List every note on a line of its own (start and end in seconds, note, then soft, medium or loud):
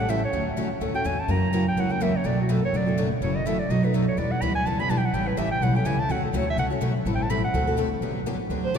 0.00 0.24 A1 medium
0.00 0.08 A3 soft
0.00 0.11 F#5 medium
0.09 0.19 C#3 medium
0.09 0.19 E3 medium
0.09 0.20 G3 medium
0.09 0.20 A3 medium
0.09 0.20 C#4 medium
0.09 0.20 E4 medium
0.09 0.20 G4 loud
0.09 0.20 A4 medium
0.09 0.23 E5 medium
0.25 0.46 C#5 medium
0.32 0.71 D2 medium
0.32 0.51 D3 medium
0.32 0.51 F#3 medium
0.32 0.51 A3 medium
0.32 0.51 C#4 medium
0.32 0.51 F#4 medium
0.32 0.52 A4 medium
0.57 0.67 D3 medium
0.57 0.67 F#3 medium
0.57 0.67 A3 medium
0.57 0.67 C#4 medium
0.57 0.68 F#4 medium
0.57 0.68 A4 medium
0.80 1.01 D2 medium
0.80 0.94 D3 medium
0.80 0.94 F#3 medium
0.80 0.94 A3 medium
0.80 0.94 C#4 medium
0.80 0.93 F#4 medium
0.80 0.99 A4 medium
0.94 1.04 A3 soft
0.94 1.04 C#4 soft
0.94 1.04 F#4 medium
0.94 1.08 G5 loud
1.04 1.25 E2 medium
1.04 1.15 D3 medium
1.04 1.15 F#3 medium
1.04 1.15 A3 medium
1.04 1.15 C#4 medium
1.04 1.16 F#4 medium
1.04 1.16 A4 loud
1.04 1.21 G#5 medium
1.20 1.33 A5 medium
1.28 1.67 F#2 medium
1.28 1.47 C#3 medium
1.28 1.47 E3 medium
1.28 1.47 F#3 medium
1.28 1.47 A#3 medium
1.28 1.47 C#4 medium
1.28 1.47 E4 medium
1.28 1.47 F#4 medium
1.28 1.47 A#4 medium
1.28 1.68 A#5 loud
1.53 1.63 C#3 medium
1.53 1.63 E3 medium
1.53 1.64 F#3 medium
1.53 1.63 A#3 medium
1.53 1.64 C#4 loud
1.53 1.64 E4 medium
1.53 1.64 F#4 loud
1.53 1.64 A#4 medium
1.68 1.81 G5 loud
1.76 2.15 C#2 medium
1.76 1.90 C#3 medium
1.76 1.90 E3 medium
1.76 1.95 F#3 medium
1.76 1.90 A#3 medium
1.76 1.89 C#4 medium
1.76 1.96 E4 medium
1.76 1.88 F#4 medium
1.76 1.96 A#4 medium
1.76 1.93 F#5 medium
1.89 2.00 A#3 soft
1.89 2.00 C#4 soft
1.89 2.00 F#4 medium
1.89 2.04 G5 loud
2.00 2.11 C#3 medium
2.00 2.11 E3 medium
2.00 2.12 F#3 medium
2.00 2.11 A#3 medium
2.00 2.11 C#4 medium
2.00 2.12 E4 medium
2.00 2.11 F#4 loud
2.00 2.12 A#4 medium
2.00 2.18 E5 medium
2.17 2.28 C#5 medium
2.24 2.63 B1 medium
2.24 2.42 B2 medium
2.24 2.43 F#3 medium
2.24 2.43 A3 medium
2.24 2.43 D4 medium
2.24 2.43 F#4 medium
2.24 2.44 B4 medium
2.24 2.39 D5 medium
2.41 2.53 F#4 medium
2.49 2.59 B2 medium
2.49 2.59 F#3 medium
2.49 2.59 A3 medium
2.49 2.60 D4 medium
2.49 2.60 F#4 medium
2.49 2.64 A4 medium
2.49 2.60 B4 loud
2.65 2.79 C#5 loud
2.73 3.11 F#1 medium
2.73 2.87 B2 medium
2.73 2.87 F#3 medium
2.73 2.87 A3 medium
2.73 2.87 D4 medium
2.73 2.85 F#4 medium
2.73 2.92 B4 medium
2.77 2.99 D5 medium
2.86 2.97 A3 soft
2.86 2.97 D4 soft
2.86 2.97 F#4 medium
2.98 3.08 B2 medium
2.98 3.08 F#3 medium
2.98 3.08 A3 medium
2.98 3.08 D4 medium
2.98 3.08 F#4 medium
2.98 3.08 B4 medium
3.21 3.59 F#1 medium
3.21 3.39 C#3 medium
3.21 3.39 E3 medium
3.21 3.39 F#3 medium
3.21 3.39 A3 medium
3.21 3.40 C#4 medium
3.21 3.39 E4 medium
3.21 3.40 F#4 medium
3.21 3.40 A4 medium
3.21 3.38 C#5 medium
3.36 3.48 D#5 medium
3.46 3.56 C#3 medium
3.46 3.56 E3 medium
3.46 3.56 F#3 medium
3.46 3.56 A3 medium
3.46 3.56 C#4 medium
3.46 3.56 E4 medium
3.46 3.56 F#4 loud
3.46 3.56 A4 medium
3.46 3.61 E5 medium
3.59 3.72 D5 medium
3.69 4.07 B1 medium
3.69 3.83 B2 medium
3.69 3.83 F#3 medium
3.69 3.83 A3 medium
3.69 3.83 D#4 medium
3.69 3.82 F#4 medium
3.69 3.88 B4 medium
3.69 3.86 D#5 medium
3.83 3.93 A3 soft
3.83 3.93 D#4 medium
3.83 3.93 F#4 medium
3.83 3.97 B4 medium
3.94 4.04 B2 medium
3.94 4.04 F#3 medium
3.94 4.04 A3 medium
3.94 4.04 D#4 medium
3.94 4.04 F#4 medium
3.94 4.08 A4 medium
3.94 4.04 B4 medium
4.08 4.20 C#5 medium
4.17 4.36 E2 medium
4.17 4.35 E3 medium
4.17 4.36 G3 medium
4.17 4.35 B3 medium
4.17 4.35 D4 medium
4.17 4.36 E4 medium
4.17 4.36 G4 medium
4.17 4.36 B4 medium
4.17 4.33 D5 medium
4.31 4.43 F#5 medium
4.41 4.62 D2 medium
4.41 4.52 E3 medium
4.41 4.52 G3 medium
4.41 4.52 B3 medium
4.41 4.52 D4 medium
4.41 4.52 E4 medium
4.41 4.52 G4 medium
4.41 4.52 B4 medium
4.41 4.55 B5 loud
4.55 4.68 G#5 loud
4.65 4.86 C#2 medium
4.65 4.79 E3 medium
4.65 4.83 G3 medium
4.65 4.79 B3 medium
4.65 4.79 D4 medium
4.65 4.84 E4 medium
4.65 4.78 G4 medium
4.65 4.83 B4 medium
4.65 4.82 A5 medium
4.79 4.89 B3 soft
4.79 4.90 D4 soft
4.79 4.89 G4 medium
4.79 4.91 B5 loud
4.89 5.10 B1 medium
4.89 5.00 E3 medium
4.89 4.99 G3 medium
4.89 5.00 B3 medium
4.89 5.00 D4 medium
4.89 4.99 E4 medium
4.89 5.00 G4 medium
4.89 5.00 B4 medium
4.89 4.99 A5 medium
4.98 5.07 G5 medium
5.05 5.16 F#5 medium
5.13 5.32 A1 medium
5.13 5.31 C#3 medium
5.13 5.31 E3 medium
5.13 5.31 G3 medium
5.13 5.32 A3 medium
5.13 5.32 C#4 medium
5.13 5.32 E4 medium
5.13 5.32 G4 medium
5.13 5.32 A4 medium
5.13 5.29 G5 medium
5.27 5.40 B4 medium
5.37 5.57 A1 medium
5.37 5.47 C#3 medium
5.37 5.48 E3 medium
5.37 5.47 G3 medium
5.37 5.48 A3 medium
5.37 5.48 C#4 medium
5.37 5.48 E4 medium
5.37 5.48 G4 loud
5.37 5.48 A4 medium
5.37 5.51 E5 medium
5.51 5.64 G5 loud
5.61 5.81 B1 medium
5.61 5.75 C#3 medium
5.61 5.75 E3 medium
5.61 5.80 G3 medium
5.61 5.75 A3 medium
5.61 5.75 C#4 medium
5.61 5.80 E4 medium
5.61 5.74 G4 medium
5.61 5.80 A4 medium
5.61 5.76 F#5 medium
5.75 5.84 A3 soft
5.75 5.85 C#4 medium
5.75 5.85 G4 medium
5.75 5.87 G5 medium
5.85 6.05 C#2 medium
5.85 5.95 C#3 medium
5.85 5.96 E3 medium
5.85 5.95 G3 medium
5.85 5.96 A3 medium
5.85 5.96 C#4 medium
5.85 5.95 E4 medium
5.85 5.96 G4 medium
5.85 5.96 A4 loud
5.85 6.01 G#5 medium
5.99 6.13 A5 loud
6.09 6.28 D2 medium
6.09 6.27 D3 medium
6.09 6.28 F#3 medium
6.09 6.28 A3 medium
6.09 6.28 C#4 medium
6.09 6.28 F#4 medium
6.09 6.28 A4 medium
6.09 6.24 F#5 medium
6.25 6.37 A4 medium
6.33 6.54 D2 medium
6.33 6.44 D3 medium
6.33 6.44 F#3 loud
6.33 6.44 A3 medium
6.33 6.44 C#4 loud
6.33 6.44 F#4 loud
6.33 6.44 A4 medium
6.33 6.48 C#5 medium
6.50 6.59 E5 loud
6.56 6.77 C#2 medium
6.56 6.71 D3 medium
6.56 6.71 F#3 medium
6.56 6.71 A3 medium
6.56 6.70 C#4 medium
6.56 6.69 F#4 medium
6.56 6.76 A4 medium
6.56 6.67 F#5 medium
6.70 6.80 A3 medium
6.70 6.80 C#4 medium
6.70 6.81 F#4 medium
6.80 7.01 B1 medium
6.80 6.91 D3 medium
6.80 6.91 F#3 loud
6.80 6.92 A3 medium
6.80 6.92 C#4 medium
6.80 6.92 F#4 medium
6.80 6.92 A4 loud
7.05 7.44 A1 medium
7.05 7.24 E3 medium
7.05 7.24 G3 medium
7.05 7.24 C4 medium
7.05 7.24 E4 medium
7.05 7.24 A4 medium
7.15 7.24 G5 medium
7.22 7.32 A5 medium
7.30 7.40 E3 medium
7.30 7.40 G3 medium
7.30 7.40 C4 medium
7.30 7.40 E4 medium
7.30 7.40 A4 medium
7.30 7.44 B5 loud
7.44 7.76 F#5 medium
7.54 7.92 D2 medium
7.54 7.67 D3 medium
7.54 7.67 A3 medium
7.54 7.67 C4 medium
7.54 7.67 F#4 medium
7.54 7.66 A4 medium
7.67 7.76 C4 soft
7.67 7.77 F#4 medium
7.67 7.77 A4 medium
7.77 7.88 D3 medium
7.77 7.88 A3 medium
7.77 7.88 C4 medium
7.77 7.88 F#4 medium
7.77 7.88 A4 loud
8.01 8.40 G1 medium
8.01 8.20 D3 medium
8.01 8.20 F#3 medium
8.01 8.20 B3 medium
8.01 8.20 D4 medium
8.01 8.20 G4 medium
8.26 8.36 D3 medium
8.26 8.36 F#3 medium
8.26 8.37 B3 medium
8.26 8.37 D4 medium
8.26 8.37 G4 medium
8.49 8.78 D2 medium
8.49 8.68 D3 medium
8.49 8.68 F#3 medium
8.49 8.68 B3 medium
8.49 8.68 D4 medium
8.49 8.69 G4 medium
8.64 8.77 C5 medium
8.74 8.78 D3 medium
8.74 8.78 F#3 medium
8.74 8.78 B3 medium
8.74 8.78 D4 medium
8.74 8.78 G4 medium